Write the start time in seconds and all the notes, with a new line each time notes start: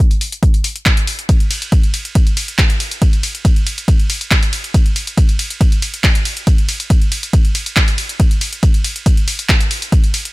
0.11 closed hi-hat
0.21 open hi-hat
0.32 closed hi-hat
0.43 kick, closed hi-hat
0.54 closed hi-hat
0.64 open hi-hat
0.76 closed hi-hat
0.86 kick, clap, closed hi-hat
0.97 closed hi-hat
1.07 open hi-hat
1.19 closed hi-hat
1.29 kick, closed hi-hat, ride
1.40 closed hi-hat
1.51 open hi-hat, ride
1.62 closed hi-hat
1.72 kick, closed hi-hat, ride
1.83 closed hi-hat
1.94 open hi-hat, ride
2.05 closed hi-hat
2.15 kick, closed hi-hat, ride
2.27 closed hi-hat
2.37 open hi-hat, ride
2.48 closed hi-hat
2.59 kick, clap, closed hi-hat, ride
2.70 closed hi-hat
2.80 open hi-hat, ride
2.91 closed hi-hat
3.02 kick, closed hi-hat, ride
3.13 closed hi-hat
3.23 open hi-hat, ride
3.35 closed hi-hat
3.45 kick, closed hi-hat, ride
3.56 closed hi-hat
3.67 open hi-hat, ride
3.78 closed hi-hat
3.88 kick, closed hi-hat, ride
3.99 closed hi-hat
4.10 open hi-hat, ride
4.21 closed hi-hat
4.31 kick, clap, closed hi-hat, ride
4.43 closed hi-hat
4.53 open hi-hat, ride
4.64 closed hi-hat
4.74 kick, closed hi-hat, ride
4.86 closed hi-hat
4.96 open hi-hat, ride
5.07 closed hi-hat
5.18 kick, closed hi-hat, ride
5.29 closed hi-hat
5.39 open hi-hat, ride
5.50 closed hi-hat
5.61 kick, closed hi-hat, ride
5.72 closed hi-hat
5.82 open hi-hat, ride
5.94 closed hi-hat
6.04 kick, clap, closed hi-hat, ride
6.15 closed hi-hat
6.25 open hi-hat, ride
6.37 closed hi-hat
6.47 kick, closed hi-hat, ride
6.58 closed hi-hat
6.69 open hi-hat, ride
6.80 closed hi-hat
6.90 kick, closed hi-hat, ride
7.02 closed hi-hat
7.12 open hi-hat, ride
7.23 closed hi-hat
7.33 kick, closed hi-hat, ride
7.45 closed hi-hat
7.55 open hi-hat, ride
7.66 closed hi-hat
7.76 kick, clap, closed hi-hat, ride
7.88 closed hi-hat
7.98 open hi-hat, ride
8.09 closed hi-hat
8.20 kick, closed hi-hat, ride
8.31 closed hi-hat
8.41 open hi-hat, ride
8.53 closed hi-hat
8.63 kick, closed hi-hat, ride
8.74 closed hi-hat
8.84 open hi-hat, ride
8.96 closed hi-hat
9.06 kick, closed hi-hat, ride
9.17 closed hi-hat
9.28 open hi-hat, ride
9.39 closed hi-hat
9.49 kick, clap, closed hi-hat, ride
9.61 closed hi-hat
9.71 open hi-hat, ride
9.82 closed hi-hat
9.92 kick, closed hi-hat, ride
10.04 closed hi-hat
10.14 open hi-hat, ride
10.25 closed hi-hat